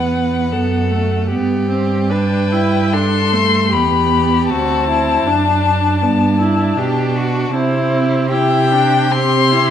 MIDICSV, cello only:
0, 0, Header, 1, 2, 480
1, 0, Start_track
1, 0, Tempo, 781250
1, 798, Tempo, 807537
1, 799, Time_signature, 4, 2, 24, 8
1, 2238, Tempo, 766284
1, 5118, Tempo, 797872
1, 5951, End_track
2, 0, Start_track
2, 0, Title_t, "Cello"
2, 0, Program_c, 0, 42
2, 0, Note_on_c, 0, 40, 28
2, 318, Note_on_c, 0, 42, 32
2, 327, Note_off_c, 0, 40, 0
2, 800, Note_on_c, 0, 43, 34
2, 809, Note_off_c, 0, 42, 0
2, 2241, Note_on_c, 0, 40, 36
2, 2251, Note_off_c, 0, 43, 0
2, 2723, Note_on_c, 0, 38, 34
2, 2733, Note_off_c, 0, 40, 0
2, 3196, Note_off_c, 0, 38, 0
2, 3200, Note_on_c, 0, 42, 35
2, 3674, Note_on_c, 0, 43, 38
2, 3684, Note_off_c, 0, 42, 0
2, 4150, Note_off_c, 0, 43, 0
2, 4153, Note_on_c, 0, 47, 39
2, 4628, Note_off_c, 0, 47, 0
2, 4632, Note_on_c, 0, 48, 42
2, 5951, Note_off_c, 0, 48, 0
2, 5951, End_track
0, 0, End_of_file